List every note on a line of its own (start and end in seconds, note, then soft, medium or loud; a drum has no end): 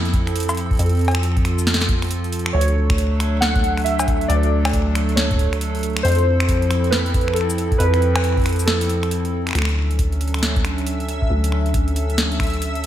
0.00 0.78 F2 medium
0.00 2.51 F3 medium
0.00 2.51 C4 medium
0.00 0.78 E4 medium
0.00 2.51 A4 medium
0.05 closed hi-hat soft
0.13 kick loud
0.13 closed hi-hat medium
0.27 finger snap soft
0.27 closed hi-hat soft
0.36 closed hi-hat medium
0.40 closed hi-hat medium
0.43 closed hi-hat medium
0.49 closed hi-hat soft
0.49 cowbell medium
0.49 shaker medium
0.55 closed hi-hat soft
0.57 closed hi-hat medium
0.71 kick loud
0.71 closed hi-hat soft
0.73 closed hi-hat soft
0.75 closed hi-hat soft
0.77 closed hi-hat soft
0.79 2.53 F2 medium
0.79 2.53 F4 medium
0.79 closed hi-hat medium
0.83 closed hi-hat soft
0.86 closed hi-hat soft
0.89 closed hi-hat soft
0.93 closed hi-hat soft
0.95 closed hi-hat soft
0.97 closed hi-hat soft
0.99 closed hi-hat soft
1.01 closed hi-hat soft
1.05 closed hi-hat soft
1.08 closed hi-hat soft
1.08 cowbell medium
1.11 finger snap medium
1.11 closed hi-hat soft
1.15 closed hi-hat soft
1.23 closed hi-hat medium
1.37 kick loud
1.37 closed hi-hat soft
1.45 finger snap medium
1.45 closed hi-hat medium
1.59 closed hi-hat soft
1.59 shaker medium
1.67 snare loud
1.67 closed hi-hat medium
1.74 snare loud
1.81 snare medium
1.81 closed hi-hat soft
1.89 kick loud
1.89 closed hi-hat medium
2.02 finger snap soft
2.02 closed hi-hat soft
2.04 closed hi-hat soft
2.07 closed hi-hat soft
2.09 closed hi-hat soft
2.11 closed hi-hat medium
2.24 closed hi-hat soft
2.32 closed hi-hat medium
2.39 closed hi-hat soft
2.46 finger snap medium
2.53 4.28 D2 medium
2.53 6.01 F#3 medium
2.53 6.01 A3 medium
2.53 6.01 D4 medium
2.53 9.51 A4 medium
2.53 3.37 C#5 loud
2.61 closed hi-hat medium
2.68 closed hi-hat soft
2.90 finger snap medium
2.90 kick loud
2.90 closed hi-hat soft
2.98 closed hi-hat medium
3.20 finger snap medium
3.20 closed hi-hat medium
3.41 3.82 F#5 loud
3.41 snare loud
3.41 closed hi-hat medium
3.56 kick loud
3.56 closed hi-hat soft
3.64 closed hi-hat medium
3.77 finger snap soft
3.77 closed hi-hat soft
3.80 closed hi-hat soft
3.82 closed hi-hat soft
3.84 4.30 E5 loud
3.84 closed hi-hat soft
3.86 closed hi-hat medium
3.99 closed hi-hat soft
3.99 cowbell medium
3.99 shaker medium
4.08 kick loud
4.08 closed hi-hat medium
4.21 closed hi-hat soft
4.28 6.03 D2 medium
4.28 5.19 D5 loud
4.28 closed hi-hat medium
4.43 closed hi-hat soft
4.65 finger snap medium
4.65 closed hi-hat soft
4.65 cowbell medium
4.67 closed hi-hat soft
4.69 closed hi-hat soft
4.71 kick loud
4.71 closed hi-hat soft
4.73 closed hi-hat medium
4.95 finger snap medium
4.95 closed hi-hat medium
5.09 closed hi-hat soft
5.16 5.57 C#5 medium
5.16 snare loud
5.16 closed hi-hat medium
5.31 kick loud
5.31 kick medium
5.31 closed hi-hat soft
5.36 kick medium
5.39 kick medium
5.39 closed hi-hat medium
5.44 kick soft
5.46 kick soft
5.53 finger snap soft
5.53 closed hi-hat soft
5.61 closed hi-hat medium
5.75 closed hi-hat soft
5.77 closed hi-hat soft
5.79 closed hi-hat soft
5.81 closed hi-hat soft
5.83 closed hi-hat medium
5.86 closed hi-hat soft
5.93 finger snap medium
5.93 closed hi-hat soft
5.97 closed hi-hat soft
6.03 7.78 F2 loud
6.03 9.52 F3 medium
6.03 9.52 C4 medium
6.03 9.52 E4 medium
6.03 6.94 C5 loud
6.03 closed hi-hat medium
6.08 closed hi-hat medium
6.12 closed hi-hat medium
6.15 closed hi-hat soft
6.18 closed hi-hat soft
6.40 finger snap medium
6.40 closed hi-hat soft
6.49 kick loud
6.49 closed hi-hat medium
6.62 closed hi-hat soft
6.71 finger snap medium
6.71 closed hi-hat medium
6.84 closed hi-hat soft
6.91 7.37 B4 loud
6.91 snare loud
6.91 closed hi-hat medium
7.06 closed hi-hat soft
7.14 kick loud
7.14 closed hi-hat medium
7.21 closed hi-hat soft
7.28 finger snap soft
7.34 7.80 A4 medium
7.34 finger snap soft
7.34 closed hi-hat medium
7.41 finger snap soft
7.50 closed hi-hat soft
7.50 shaker medium
7.58 closed hi-hat medium
7.72 kick loud
7.72 closed hi-hat soft
7.78 9.54 F2 medium
7.78 8.69 B4 loud
7.78 closed hi-hat loud
7.94 finger snap soft
7.94 closed hi-hat soft
8.02 closed hi-hat soft
8.16 finger snap medium
8.16 closed hi-hat soft
8.16 cowbell medium
8.24 closed hi-hat medium
8.37 kick loud
8.37 closed hi-hat soft
8.39 closed hi-hat soft
8.42 closed hi-hat soft
8.44 finger snap medium
8.44 closed hi-hat soft
8.46 closed hi-hat medium
8.49 closed hi-hat medium
8.53 closed hi-hat soft
8.56 closed hi-hat soft
8.59 closed hi-hat soft
8.59 shaker medium
8.61 closed hi-hat soft
8.64 closed hi-hat soft
8.66 9.28 A4 medium
8.66 finger snap medium
8.66 snare loud
8.66 closed hi-hat soft
8.81 closed hi-hat medium
8.89 closed hi-hat medium
9.03 finger snap soft
9.03 closed hi-hat soft
9.11 closed hi-hat medium
9.25 closed hi-hat soft
9.47 finger snap soft
9.47 closed hi-hat soft
9.49 finger snap soft
9.51 finger snap medium
9.53 finger snap medium
9.55 11.29 D2 medium
9.55 12.86 F#3 medium
9.55 12.86 C#4 medium
9.55 12.86 D4 medium
9.55 12.86 A4 medium
9.55 12.86 E5 medium
9.55 finger snap medium
9.55 closed hi-hat medium
9.59 finger snap medium
9.62 finger snap medium
9.65 finger snap medium
9.65 closed hi-hat soft
9.91 closed hi-hat soft
9.99 kick loud
9.99 closed hi-hat medium
10.12 closed hi-hat soft
10.21 closed hi-hat medium
10.28 closed hi-hat soft
10.34 finger snap medium
10.34 closed hi-hat soft
10.39 closed hi-hat soft
10.43 snare loud
10.43 closed hi-hat medium
10.56 kick loud
10.56 closed hi-hat soft
10.65 finger snap medium
10.65 closed hi-hat medium
10.78 closed hi-hat soft
10.87 closed hi-hat medium
11.00 closed hi-hat soft
11.09 closed hi-hat medium
11.22 kick loud
11.30 12.86 D2 medium
11.44 closed hi-hat medium
11.52 finger snap soft
11.66 closed hi-hat soft
11.74 kick loud
11.74 closed hi-hat medium
11.88 closed hi-hat soft
11.96 closed hi-hat medium
12.10 closed hi-hat soft
12.18 snare loud
12.18 closed hi-hat medium
12.32 closed hi-hat soft
12.40 finger snap medium
12.40 kick loud
12.40 closed hi-hat medium
12.43 closed hi-hat soft
12.47 closed hi-hat soft
12.50 closed hi-hat soft
12.54 closed hi-hat soft
12.62 closed hi-hat medium
12.75 closed hi-hat soft